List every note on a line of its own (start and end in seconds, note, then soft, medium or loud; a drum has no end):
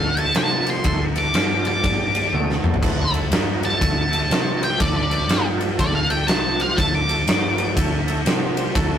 0.00 0.32 D2 loud
0.00 0.20 F5 loud
0.16 0.30 A3 medium
0.16 0.30 D4 medium
0.16 0.30 F#4 medium
0.16 0.30 A4 medium
0.16 0.35 A5 medium
0.16 ride medium
0.34 0.81 C3 medium
0.34 0.58 G3 medium
0.34 0.58 C4 medium
0.34 0.58 G4 medium
0.34 0.58 C5 medium
0.34 0.68 A5 medium
0.34 snare loud
0.34 ride medium
0.67 0.80 G3 medium
0.67 0.80 C4 medium
0.67 0.80 G4 medium
0.67 0.81 C5 medium
0.67 1.01 C6 medium
0.67 ride medium
0.83 1.30 D2 loud
0.83 1.07 A3 medium
0.83 1.07 D4 medium
0.83 1.07 F#4 medium
0.83 1.08 A4 loud
0.83 kick loud
0.83 ride medium
1.15 1.29 A3 medium
1.15 1.29 D4 medium
1.15 1.29 F#4 medium
1.15 1.30 B4 medium
1.15 1.66 D6 medium
1.15 ride medium
1.33 1.80 G2 medium
1.33 1.57 G3 medium
1.33 1.57 D4 medium
1.33 1.57 G4 medium
1.33 1.58 D5 medium
1.33 snare loud
1.33 ride medium
1.65 1.79 G3 medium
1.65 1.79 D4 medium
1.65 1.80 G4 medium
1.65 1.80 D5 medium
1.65 3.12 D6 loud
1.65 ride medium
1.83 2.30 G2 loud
1.83 2.06 G3 medium
1.83 2.06 D4 medium
1.83 2.07 G4 medium
1.83 2.07 D5 loud
1.83 kick loud
1.83 ride medium
2.15 2.28 G3 medium
2.15 2.29 D4 medium
2.15 2.29 G4 medium
2.15 2.29 D5 medium
2.15 ride medium
2.32 2.62 D2 medium
2.32 2.56 A3 medium
2.32 2.56 D4 medium
2.32 2.57 F#4 medium
2.32 2.56 A4 loud
2.32 high tom medium
2.50 snare medium
2.63 2.81 F2 medium
2.63 2.77 A3 medium
2.63 2.77 D4 medium
2.63 2.78 F#4 medium
2.63 2.78 C5 medium
2.63 mid tom medium
2.74 floor tom medium
2.82 3.29 D2 medium
2.82 3.05 A3 loud
2.82 3.05 D4 loud
2.82 3.05 F#4 loud
2.82 3.06 B4 loud
2.82 kick loud
2.82 crash medium
3.12 3.26 A3 medium
3.12 3.26 D4 medium
3.12 3.27 F#4 medium
3.12 3.27 A4 medium
3.12 ride medium
3.30 3.77 G2 medium
3.30 3.54 G3 medium
3.30 3.55 D4 medium
3.30 3.55 G4 medium
3.30 3.55 D5 medium
3.30 snare loud
3.30 ride loud
3.62 3.76 G3 medium
3.62 3.77 D4 medium
3.62 3.76 G4 medium
3.62 3.77 E5 medium
3.62 4.61 A5 loud
3.62 ride medium
3.79 4.27 D2 medium
3.79 4.03 A3 medium
3.79 4.03 D4 medium
3.79 4.04 F#4 medium
3.79 4.04 A4 loud
3.79 kick loud
3.79 ride loud
4.11 4.25 A3 medium
4.11 4.25 D4 medium
4.11 4.25 F#4 medium
4.11 4.26 A4 medium
4.11 ride medium
4.29 4.76 C3 medium
4.29 4.53 G3 medium
4.29 4.53 C4 medium
4.29 4.53 G4 medium
4.29 4.54 C5 loud
4.29 snare loud
4.29 ride medium
4.59 4.74 G3 medium
4.59 4.74 C4 medium
4.59 4.75 G4 medium
4.59 4.75 C5 medium
4.59 ride medium
4.64 4.80 G5 medium
4.78 5.26 D2 loud
4.78 5.02 A3 loud
4.78 5.02 D4 medium
4.78 5.03 F#4 medium
4.78 5.03 A4 loud
4.78 4.95 D5 medium
4.78 kick loud
4.78 ride medium
4.96 5.45 D5 loud
5.10 5.24 A3 medium
5.10 5.24 D4 medium
5.10 5.24 F#4 medium
5.10 5.25 B4 medium
5.10 ride medium
5.27 5.74 G2 loud
5.27 5.51 G3 medium
5.27 5.52 D4 medium
5.27 5.52 G4 medium
5.27 5.52 D5 medium
5.27 snare loud
5.27 ride medium
5.58 5.73 G3 medium
5.58 5.73 D4 medium
5.58 5.73 G4 medium
5.58 5.73 E5 medium
5.58 ride medium
5.77 6.25 D2 loud
5.77 6.01 A3 loud
5.77 6.01 D4 medium
5.77 6.01 F#4 medium
5.77 6.01 A4 loud
5.77 5.94 D5 loud
5.77 kick loud
5.77 ride medium
5.95 6.11 F5 medium
6.09 6.23 A3 medium
6.09 6.24 D4 medium
6.09 6.23 F#4 medium
6.09 6.24 A4 medium
6.09 6.27 G5 medium
6.09 ride medium
6.26 6.74 C2 medium
6.26 6.50 G3 medium
6.26 6.50 C4 medium
6.26 6.51 G4 medium
6.26 6.51 C5 medium
6.26 6.60 A5 medium
6.26 snare loud
6.26 ride medium
6.58 6.72 G3 medium
6.58 6.72 C4 medium
6.58 6.73 G4 medium
6.58 6.73 C5 medium
6.58 6.77 F5 loud
6.58 ride medium
6.76 7.24 D2 loud
6.76 7.00 A3 medium
6.76 7.00 D4 medium
6.76 7.00 F#4 medium
6.76 7.00 A4 loud
6.76 6.93 A5 loud
6.76 kick loud
6.76 ride medium
6.95 7.90 D6 loud
7.07 7.22 A3 medium
7.07 7.22 D4 medium
7.07 7.22 F#4 medium
7.07 7.23 A4 medium
7.07 ride medium
7.27 7.73 G2 loud
7.27 7.51 G3 medium
7.27 7.51 D4 medium
7.27 7.51 G4 medium
7.27 7.51 D5 medium
7.27 snare loud
7.27 ride loud
7.57 7.71 G3 medium
7.57 7.72 D4 medium
7.57 7.72 G4 medium
7.57 7.72 B4 medium
7.57 ride medium
7.76 8.22 D2 loud
7.76 7.99 A3 loud
7.76 7.99 D4 loud
7.76 7.99 F#4 loud
7.76 7.99 A4 loud
7.76 kick loud
7.76 ride loud
8.07 8.21 A3 loud
8.07 8.21 D4 medium
8.07 8.22 F#4 medium
8.07 8.22 A4 loud
8.07 ride medium
8.25 8.71 C3 loud
8.25 8.48 G3 loud
8.25 8.49 C4 medium
8.25 8.49 G4 medium
8.25 8.49 C5 loud
8.25 snare loud
8.25 ride medium
8.56 8.70 G3 medium
8.56 8.70 C4 medium
8.56 8.71 G4 medium
8.56 8.71 C5 loud
8.56 ride medium
8.75 8.98 D2 medium
8.75 8.98 A3 loud
8.75 8.98 D4 loud
8.75 8.98 F#4 loud
8.75 8.98 A4 loud
8.75 kick loud
8.75 ride loud